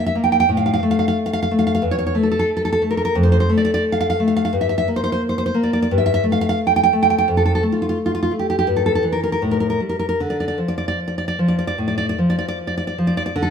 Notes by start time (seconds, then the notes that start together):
Already playing: A#3
0.06 E5
0.15 A#3
0.24 G5
0.32 G5
0.40 G5
0.49 A2
0.57 F5
0.66 F5
0.74 F5
0.83 A3
0.91 F5
0.99 F5
1.08 F5
1.26 F5
1.33 F5
1.43 F5
1.51 A3
1.59 F5
1.67 F5
1.75 F5
1.82 E2
1.91 C#5
1.99 C#5
2.07 C#5
2.15 A3
2.23 A4
2.32 A4
2.39 A4
2.57 A4
2.65 A4
2.73 A4
2.82 A3
2.91 A#4
2.97 A#4
3.05 A#4
3.15 F2
3.23 C5
3.32 C5
3.40 C5
3.50 A3
3.57 D5
3.65 D5
3.74 D5
3.92 F5
4.01 F5
4.10 F5
4.20 A3
4.28 F5
4.36 F5
4.45 F5
4.53 G2
4.61 E5
4.69 E5
4.78 E5
4.88 A#3
4.96 C5
5.04 C5
5.12 C5
5.29 C5
5.38 C5
5.46 C5
5.54 A#3
5.63 D5
5.73 D5
5.82 D5
5.91 G2
5.98 E5
6.06 E5
6.14 E5
6.24 A3
6.32 F5
6.41 F5
6.49 F5
6.67 G5
6.76 G5
6.83 G5
6.93 A3
7.03 G5
7.10 G5
7.18 G5
7.28 F2
7.37 A4
7.46 A4
7.55 A4
7.63 A3
7.72 F4
7.82 F4
7.89 F4
8.06 F4
8.15 F4
8.23 F4
8.31 A3
8.39 G4
8.50 G4
8.59 G4
8.67 G2
8.76 A4
8.86 A4
8.95 A4
9.03 E3
9.13 A#4
9.24 A#4
9.32 A#4
9.42 A2
9.51 A#4
9.60 A#4
9.70 A#4
9.80 G3
9.89 A#4
9.99 A#4
10.09 A#4
10.20 D3
10.30 D5
10.40 D5
10.48 D5
10.58 F3
10.68 D5
10.78 D5
10.88 D5
11.08 D5
11.18 D5
11.28 D5
11.39 F3
11.48 D5
11.59 D5
11.67 D5
11.78 A2
11.88 D5
11.98 D5
12.09 D5
12.19 F3
12.30 D5
12.39 D5
12.48 D5
12.67 D5
12.77 D5
12.87 D5
12.98 F3
13.07 D5
13.17 D5
13.26 D5
13.36 D3
13.42 A4